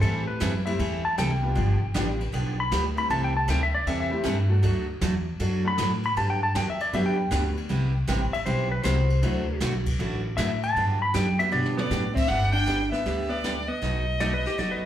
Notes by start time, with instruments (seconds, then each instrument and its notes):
Already playing: upright piano G3 A3 C4 E4 A4
0.01 upright bass A2, steel-string acoustic guitar E3 G3 C4 E4 A4, electric slide guitar A4, kick, ride
0.27 electric slide guitar B4
0.40 upright bass F#2, steel-string acoustic guitar E3 G3 C4 E4 A4, kick, snare, hi-hat pedal, ride
0.65 upright piano G3 A3 C4 E4 G4, electric slide guitar E5, ride
0.79 upright bass E2, steel-string acoustic guitar E3 G3 C4 E4 A4, kick, ride
1.05 electric slide guitar A5
1.18 upright bass C2, steel-string acoustic guitar E3 G3 C4 E4 A4, electric slide guitar G5, kick, snare, hi-hat pedal, ride
1.42 upright piano G3 B3 D4 F4 G4
1.55 upright bass G1, steel-string acoustic guitar D3 F3 B3 D4 G4, kick, ride
1.83 muted upright bass stroke
1.94 upright bass A1, steel-string acoustic guitar D3 F3 B3 D4 G4, upright piano G3 B3 D4 F4 G4, kick, snare, hi-hat pedal, ride
2.20 ride
2.32 upright bass B1, steel-string acoustic guitar D3 F3 B3 D4 G4, kick, ride
2.60 electric slide guitar B5
2.71 upright bass D2, steel-string acoustic guitar D3 F3 B3 D4 G4, kick, snare, hi-hat pedal, ride
2.95 upright piano G3 A3 C4 E4 G4, electric slide guitar B5, ride
3.10 upright bass C2, steel-string acoustic guitar C3 E3 G3 C4 E4 A4, electric slide guitar A5, kick, ride
3.24 electric slide guitar G5
3.37 electric slide guitar A5
3.48 upright bass D2, steel-string acoustic guitar C3 E3 G3 C4 E4 A4, electric slide guitar G5, kick, snare, hi-hat pedal, ride
3.63 electric slide guitar E5
3.75 electric slide guitar D5
3.86 upright bass E2, steel-string acoustic guitar C3 E3 G3 C4 E4 A4, electric slide guitar E5, kick, ride
4.00 electric slide guitar E5
4.10 upright piano G3 A3 C4 E4 G4
4.24 upright bass G2, steel-string acoustic guitar C3 E3 G3 C4 E4 A4, kick, snare, hi-hat pedal, ride
4.48 upright piano F#3 A3 D4 F#4 A4
4.63 upright bass D2, steel-string acoustic guitar D3 F#3 A3 D4 F#4, kick, ride
5.01 upright bass E2, steel-string acoustic guitar D3 F#3 A3 D4 F#4, kick, snare, hi-hat pedal, ride
5.40 upright bass F#2, steel-string acoustic guitar D3 F#3 A3 D4 F#4, kick, ride
5.63 upright piano F#3 A3 D4 F#4 A4
5.68 electric slide guitar B5
5.78 upright bass A2, steel-string acoustic guitar D3 F#3 A3 D4 F#4, kick, snare, hi-hat pedal, ride
6.03 electric slide guitar B5, ride
6.16 upright bass G2, steel-string acoustic guitar D3 F#3 B3 D4 G4, electric slide guitar A5, kick, ride
6.30 electric slide guitar G5
6.43 electric slide guitar A5
6.55 upright bass E2, steel-string acoustic guitar D3 F#3 B3 D4 G4, electric slide guitar G5, kick, snare, hi-hat pedal, ride
6.70 electric slide guitar E5
6.80 electric slide guitar D5, ride
6.93 upright bass F#2, steel-string acoustic guitar D3 F#3 B3 D4 G4, upright piano G3 B3 D4 F#4 G4, electric slide guitar E5, kick, ride
7.06 electric slide guitar G5
7.30 upright bass D2, steel-string acoustic guitar D3 F#3 B3 D4 G4, upright piano G3 B3 D4 F#4 G4, kick, snare, hi-hat pedal, ride
7.57 ride
7.69 upright bass C2, steel-string acoustic guitar C3 G3 B3 E4 G4, kick, ride
8.08 upright bass A1, steel-string acoustic guitar C3 G3 B3 E4 G4, upright piano G3 B3 C4 E4 G4, kick, snare, hi-hat pedal, ride
8.32 electric slide guitar E5, muted upright bass stroke, ride
8.46 upright bass B1, steel-string acoustic guitar C3 G3 B3 E4 G4, electric slide guitar C5, kick, ride
8.72 electric slide guitar B4
8.83 upright bass C2, steel-string acoustic guitar C3 G3 B3 E4 G4, upright piano G3 B3 C4 E4 F#4, electric slide guitar C5, kick, snare, hi-hat pedal, ride
9.10 ride
9.22 upright bass D2, steel-string acoustic guitar D3 F#3 A3 E4 F#4, upright piano F#3 A3 D4 E4 F#4, kick, ride
9.60 upright bass B1, steel-string acoustic guitar D3 F#3 A3 E4 F#4, kick, snare, hi-hat pedal, ride
9.86 kick, ride
9.99 upright bass A1, steel-string acoustic guitar D3 F#3 A3 E4 F#4
10.37 upright bass A2, steel-string acoustic guitar D3 F#3 A3 E4 F#4, electric slide guitar E5, kick, snare, hi-hat pedal, ride
10.63 electric slide guitar A5, ride
10.76 upright bass G2, steel-string acoustic guitar D3 F#3 B3 D4 G4, kick, ride
11.02 electric slide guitar B5
11.14 upright bass F#2, steel-string acoustic guitar D3 F#3 B3 D4 G4, electric slide guitar G5, kick, snare, hi-hat pedal, ride
11.38 upright piano G3 B3 D4 F#4 G4, electric slide guitar E5, ride
11.52 upright bass B2, steel-string acoustic guitar D3 F#3 B3 D4 G4, electric slide guitar D5
11.65 high tom
11.77 upright piano G3 B3 D4 F#4 A4, hollow-body jazz guitar B3, fiddle D5, high tom
11.91 upright bass A2, steel-string acoustic guitar D3 F#3 B3 D4 G4, snare, hi-hat pedal
12.15 hollow-body jazz guitar C4, fiddle E5, kick, crash
12.28 upright bass G1, steel-string acoustic guitar D3 G3 B3 D4 G4, hollow-body jazz guitar D4, fiddle F#5, brush sweep, snare
12.52 hollow-body jazz guitar D4, fiddle G5
12.67 steel-string acoustic guitar D3 G3 B3 D4 G4, kick, snare, hi-hat pedal
12.91 hollow-body jazz guitar B3, fiddle E5, snare
13.06 upright bass D2, steel-string acoustic guitar D3 G3 B3 D4 G4, brush sweep, kick, snare
13.29 hollow-body jazz guitar B3, fiddle D5
13.44 steel-string acoustic guitar D3 G3 B3 D4 G4, kick, snare, hi-hat pedal
13.68 hollow-body jazz guitar B3, fiddle D#5
13.82 upright bass B1, steel-string acoustic guitar B2 F#3 A3 D#4 F#4, brush sweep, kick, snare
14.20 steel-string acoustic guitar B2 F#3 A3 D#4 F#4, electric slide guitar D5, kick, snare, hi-hat pedal
14.34 electric slide guitar B4
14.46 electric slide guitar G4, snare
14.58 upright bass F#1, steel-string acoustic guitar B2 F#3 A3 D#4 F#4, electric slide guitar D5, brush sweep, kick, snare
14.71 electric slide guitar B4